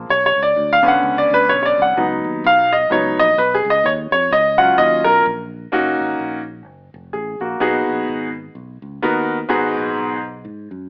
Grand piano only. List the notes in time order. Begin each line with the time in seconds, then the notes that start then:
0.10 C#5
0.26 C#5
0.43 D5
0.73 F5
0.83 D3 B3 C#4
0.88 F#5
1.18 D5
1.34 B4
1.49 C#5
1.63 C#5 D5
1.82 F#5
1.97 F#3 B3 D#4
2.46 F5
2.73 D#5
2.90 F#3 B3 D#4 C#5
3.19 D#5
3.38 B4
3.55 G#4
3.70 D#5
3.86 C#5
4.12 C#5
4.33 D#5
4.58 F#3 C#4 F4 F#5
4.78 D#5
5.04 A#4
5.72 A#3 C#4 D#4 F#4
7.13 G#4
7.41 A#3 F#4
7.60 B2 B3 D#4 F#4 G#4
9.02 B3 D#4 F#4 A#4
9.49 G#2 B3 D#4 F#4 G#4